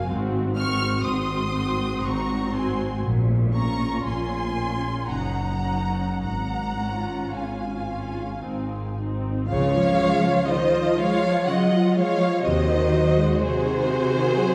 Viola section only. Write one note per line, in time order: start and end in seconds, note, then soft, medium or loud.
0.09 0.56 C4 medium
0.09 0.56 F#4 medium
0.57 1.52 C4 medium
0.57 1.52 F#4 medium
1.54 2.51 C4 medium
1.54 2.51 F#4 medium
2.53 3.03 C4 medium
2.53 3.03 F#4 medium
3.55 4.55 C#4 medium
3.55 4.55 F4 medium
4.57 5.09 C#4 soft
4.57 5.09 F4 medium
5.10 5.64 C#4 soft
5.10 5.64 D#4 soft
5.65 6.21 C#4 soft
5.65 6.21 D#4 soft
6.76 7.85 C#4 soft
6.76 7.85 F4 soft
7.87 8.41 C#4 soft
7.87 8.41 F4 soft
8.42 8.96 C4 soft
8.42 8.96 D#4 soft
8.98 9.49 C4 soft
8.98 9.49 D#4 soft
9.50 9.73 C#3 medium
9.50 12.42 F4 medium
9.74 9.99 F3 medium
10.00 10.24 G#3 medium
10.23 10.48 F3 medium
10.48 10.73 C#3 medium
10.73 10.98 F3 medium
10.98 11.23 G#3 medium
11.23 11.48 F3 medium
11.48 11.72 C#3 medium
11.71 11.96 F3 medium
11.96 12.21 G#3 medium
12.20 12.45 F3 medium
12.44 12.68 C3 medium
12.44 14.55 F#4 medium
12.69 12.93 D#3 medium
12.93 13.17 F#3 medium
13.17 13.41 G#3 medium
13.43 13.66 F#3 medium
13.66 13.89 D#3 medium
13.90 14.13 C3 medium
14.14 14.36 D#3 medium
14.37 14.55 F#3 medium